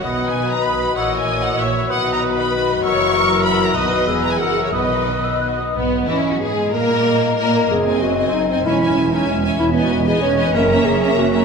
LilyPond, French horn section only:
\new Staff \with { instrumentName = "French horn section" } { \clef bass \time 3/4 \key b \major \tempo 4 = 190 << { fis'2.~ | fis'2. | fis'2.~ | fis'2. |
fis'4 gis'4 ais'4 | b'2~ b'8 r8 | \key cis \dorian r2. | r2. |
r2. | r2. | \key e \lydian r2. | r2. | } \\ { dis2. | e2. | dis2. | e2. |
dis4 e2 | dis2~ dis8 r8 | r2. | r2. |
r2. | r2. | r2. | r2. | } >> }